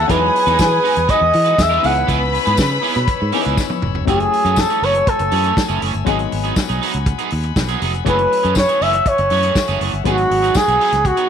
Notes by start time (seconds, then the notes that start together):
Already playing: A4
0.01 F#4 F#5
0.08 E2 F#3 G#3 B3 D#4 E4 F#4 G#4 B4 F#5 G#5 D#6, kick, closed hi-hat
0.22 muted clean electric guitar stroke
0.35 muted clean electric guitar stroke, open hi-hat
0.46 E2 G#3 D#4 F#4 B4, closed hi-hat
0.58 E3 B4, muted clean electric guitar stroke, kick, snare, closed hi-hat, tambourine
0.71 muted clean electric guitar stroke
0.83 G#3 D#4 F#4 B4, open hi-hat
0.96 E2, muted clean electric guitar stroke, closed hi-hat
1.08 G#3 D#4 F#4 B4 D#5, kick, closed hi-hat
1.21 E2, muted clean electric guitar stroke
1.33 E3, muted clean electric guitar stroke, open hi-hat
1.45 G#3 D#4 F#4 B4, closed hi-hat
1.58 E2 E5, muted clean electric guitar stroke, kick, snare, closed hi-hat, tambourine
1.69 G#3 D#4 F#4 B4
1.82 C#2 E3 B3 C#4 D#4 E4 G#4 B4 C#5 F#5 B5 E6, open hi-hat
1.95 muted clean electric guitar stroke, closed hi-hat
2.07 C#2 B3 E4 G#4 B4, kick, closed hi-hat
2.20 muted clean electric guitar stroke
2.33 muted clean electric guitar stroke, open hi-hat
2.45 G#2 B3 E4 G#4 B4, closed hi-hat
2.57 C#3, muted clean electric guitar stroke, kick, snare, closed hi-hat, tambourine
2.70 muted clean electric guitar stroke
2.82 B3 E4 G#4 B4, open hi-hat
2.95 B2, muted clean electric guitar stroke, snare, closed hi-hat
3.07 muted clean electric guitar stroke, kick, closed hi-hat
3.20 G#2, muted clean electric guitar stroke
3.32 E3 B3 C#4 D#4 E4 G#4 B4, open hi-hat
3.44 C#2 B3 E4 G#4 B4, closed hi-hat
3.57 muted clean electric guitar stroke, kick, snare, tambourine
3.70 muted clean electric guitar stroke, high tom
3.82 F1, mid tom
3.95 muted clean electric guitar stroke, floor tom
4.05 F#1 E3 F#3 A3 C#4 E4 F#4 G#4 G#5 E6, kick, closed hi-hat
4.09 G#4
4.20 muted clean electric guitar stroke, closed hi-hat
4.32 muted clean electric guitar stroke, open hi-hat
4.45 F#2 E3 A3 C#4 G#4, closed hi-hat
4.56 A4, muted clean electric guitar stroke, kick, snare, tambourine
4.70 E3 A3 C#4 G#4, closed hi-hat
4.82 F#1 E3 A3 C#4 G#4 C#5, open hi-hat
4.94 muted clean electric guitar stroke, closed hi-hat
5.07 A4, muted clean electric guitar stroke, kick, closed hi-hat
5.19 F#1, muted clean electric guitar stroke, closed hi-hat
5.31 F#2 E3 A3 C#4 G#4, open hi-hat
5.43 E3 A3 C#4 G#4, closed hi-hat
5.57 kick, snare, tambourine
5.68 F#1 E3 A3 C#4 G#4, closed hi-hat
5.81 F#1 E3 A3 C#4 G#4, open hi-hat
5.94 G1, muted clean electric guitar stroke, closed hi-hat
6.05 G#1 F#3 G#3 B3 D#4 G#4 F#5 G#5 B5, kick, closed hi-hat
6.18 muted clean electric guitar stroke, closed hi-hat
6.31 G#1, muted clean electric guitar stroke, open hi-hat
6.44 F#3 B3 D#4 G#4, closed hi-hat
6.56 muted clean electric guitar stroke, kick, snare, tambourine
6.69 B1 F#3 B3 D#4 G#4, closed hi-hat
6.81 F#3 B3 D#4 G#4, open hi-hat
6.93 C#2, muted clean electric guitar stroke, closed hi-hat
7.06 muted clean electric guitar stroke, kick, closed hi-hat
7.18 F#3 B3 D#4 G#4, closed hi-hat
7.30 D#2, muted clean electric guitar stroke, open hi-hat
7.43 muted clean electric guitar stroke, closed hi-hat
7.56 B1, muted clean electric guitar stroke, kick, snare, tambourine
7.68 F#3 B3 D#4 G#4, closed hi-hat
7.81 F1 F#3 B3 D#4 G#4, open hi-hat
7.94 muted clean electric guitar stroke, closed hi-hat
8.04 F#1 E3 F#3 A3 C#4 E4 G#4 B4 E5 F#5, kick, closed hi-hat
8.19 muted clean electric guitar stroke, closed hi-hat
8.31 muted clean electric guitar stroke, open hi-hat
8.43 F#2 E3 A3 C#4 G#4, closed hi-hat
8.55 C#5, muted clean electric guitar stroke, kick, snare, tambourine
8.68 E3 A3 C#4 G#4, closed hi-hat
8.81 F#1 E3 A3 C#4 G#4 E5, open hi-hat
8.93 muted clean electric guitar stroke, closed hi-hat
9.06 C#5, muted clean electric guitar stroke, kick, closed hi-hat
9.18 F#1, muted clean electric guitar stroke, closed hi-hat
9.30 F#2 E3 A3 C#4 G#4, open hi-hat
9.43 E3 A3 C#4 G#4, closed hi-hat
9.55 muted clean electric guitar stroke, kick, snare, tambourine
9.67 F#1 E3 A3 C#4 G#4, closed hi-hat
9.81 F#1 E3 A3 C#4 G#4, open hi-hat
9.93 G1, muted clean electric guitar stroke, closed hi-hat
10.04 G#1 F#3 G#3 B3 D#4 G#4 F#5 B5, kick, closed hi-hat
10.09 F#4
10.18 muted clean electric guitar stroke, closed hi-hat
10.31 G#1, muted clean electric guitar stroke, open hi-hat
10.42 F#3 B3 D#4 G#4, closed hi-hat
10.55 G#4, muted clean electric guitar stroke, kick, snare, tambourine
10.68 B1 F#3 B3 D#4 G#4, closed hi-hat
10.80 F#3 B3 D#4 G#4, open hi-hat
10.92 C#2, muted clean electric guitar stroke, snare, closed hi-hat
11.05 F#4, muted clean electric guitar stroke, kick, closed hi-hat
11.17 F#3 B3 D#4 G#4, closed hi-hat